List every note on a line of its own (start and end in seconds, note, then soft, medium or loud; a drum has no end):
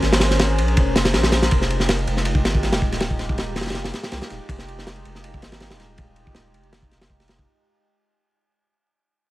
0.00 0.60 G#1 medium
0.00 0.74 C#4 loud
0.00 0.74 G#4 medium
0.00 0.74 A#4 medium
0.00 0.75 C5 loud
0.00 snare soft
0.00 ride medium
0.12 snare medium
0.12 ride medium
0.20 snare loud
0.20 ride medium
0.31 snare soft
0.31 ride medium
0.39 snare loud
0.39 ride medium
0.58 0.77 A#1 loud
0.58 ride medium
0.68 ride soft
0.77 0.94 F1 medium
0.77 0.94 C#4 medium
0.77 0.93 G#4 medium
0.77 0.93 A#4 medium
0.77 0.93 C5 medium
0.77 kick medium
0.77 ride medium
0.96 1.16 F1 medium
0.96 1.49 C#4 loud
0.96 1.49 G#4 medium
0.96 1.49 A#4 medium
0.96 1.49 C5 loud
0.96 snare loud
0.96 ride medium
1.05 snare loud
1.05 ride medium
1.14 1.50 A#1 medium
1.14 snare loud
1.14 ride medium
1.23 snare loud
1.23 ride medium
1.32 snare loud
1.32 ride medium
1.42 snare medium
1.42 ride medium
1.51 2.06 F1 loud
1.51 2.24 G#3 medium
1.51 2.24 D#4 medium
1.51 2.24 F4 medium
1.51 2.24 G4 loud
1.51 kick loud
1.51 ride medium
1.61 snare soft
1.70 ride medium
1.80 snare soft
1.89 snare loud
1.89 ride medium
1.99 ride soft
2.07 2.46 F1 loud
2.07 ride medium
2.17 snare soft
2.25 2.42 G#3 medium
2.25 2.42 D#4 medium
2.25 2.42 F4 medium
2.25 2.43 G4 medium
2.25 ride medium
2.35 kick medium
2.44 2.74 G#1 loud
2.44 2.98 G#3 loud
2.44 2.98 D#4 medium
2.44 2.98 F4 medium
2.44 2.98 G4 loud
2.44 snare medium
2.44 ride medium
2.55 kick medium
2.63 snare soft
2.63 ride medium
2.73 3.58 D#1 medium
2.73 snare loud
2.73 ride medium
2.82 kick medium
2.92 snare soft
2.92 ride medium
3.00 3.73 G#3 medium
3.00 3.73 D#4 medium
3.00 3.73 F4 medium
3.00 3.73 G4 loud
3.00 snare loud
3.00 ride medium
3.10 kick medium
3.19 snare soft
3.19 ride medium
3.29 kick medium
3.38 snare loud
3.38 ride medium
3.56 3.92 F1 loud
3.56 snare medium
3.56 ride medium
3.61 snare medium
3.61 ride medium
3.66 snare medium
3.66 ride medium
3.70 snare medium
3.70 ride medium
3.75 3.91 G#3 medium
3.75 3.92 D#4 medium
3.75 3.92 F4 medium
3.75 3.92 G4 medium
3.75 snare medium
3.75 ride medium
3.84 snare loud
3.84 ride medium
3.93 4.47 G#3 loud
3.93 4.47 D#4 medium
3.93 4.47 F4 medium
3.93 4.47 G4 loud
3.93 snare medium
3.93 ride medium
4.03 snare loud
4.03 ride medium
4.12 4.21 C2 medium
4.12 snare loud
4.12 ride medium
4.22 snare loud
4.22 ride medium
4.30 4.40 D#1 medium
4.30 snare soft
4.30 ride medium
4.49 5.04 F1 loud
4.49 5.22 G#3 medium
4.49 5.22 D#4 medium
4.49 5.22 F4 medium
4.49 5.22 G4 loud
4.49 kick loud
4.49 ride medium
4.59 snare medium
4.68 ride medium
4.78 snare soft
4.87 snare loud
4.87 ride medium
4.96 ride soft
5.05 5.44 F1 loud
5.05 ride medium
5.15 snare soft
5.23 5.40 G#3 medium
5.23 5.40 D#4 medium
5.23 5.40 F4 medium
5.23 5.40 G4 medium
5.23 ride medium
5.34 kick medium
5.42 5.73 G#1 loud
5.42 5.96 G#3 loud
5.42 5.96 D#4 medium
5.42 5.96 F4 medium
5.42 5.96 G4 loud
5.42 snare medium
5.42 ride medium
5.52 snare medium
5.52 ride medium
5.60 snare loud
5.60 ride medium
5.70 6.56 D#1 medium
5.70 snare medium
5.70 ride medium
5.80 snare soft
5.80 ride medium
5.98 6.71 G#3 medium
5.98 6.71 D#4 medium
5.98 6.71 F4 medium
5.98 6.71 G4 loud
5.98 kick loud
5.98 ride medium
6.16 ride medium
6.27 kick medium
6.35 snare loud
6.35 ride medium
6.54 6.90 F1 medium
6.54 ride medium
6.63 ride soft
6.73 6.89 G#3 medium
6.73 6.89 D#4 medium
6.73 6.89 F4 medium
6.73 6.89 G4 medium
6.73 snare loud
6.73 ride medium
6.82 kick medium
6.91 7.46 F1 medium
6.91 7.27 G#3 medium
6.91 7.27 D#4 medium
6.91 7.27 F4 medium
6.91 7.27 G4 medium
6.91 snare soft
6.91 ride medium
7.01 snare loud
7.01 ride medium
7.10 kick medium
7.20 snare soft
7.20 ride medium
7.28 7.45 G#3 medium
7.28 7.45 D#4 medium
7.28 7.45 F4 medium
7.28 7.45 G4 medium
7.28 snare medium
7.28 ride medium
7.38 kick medium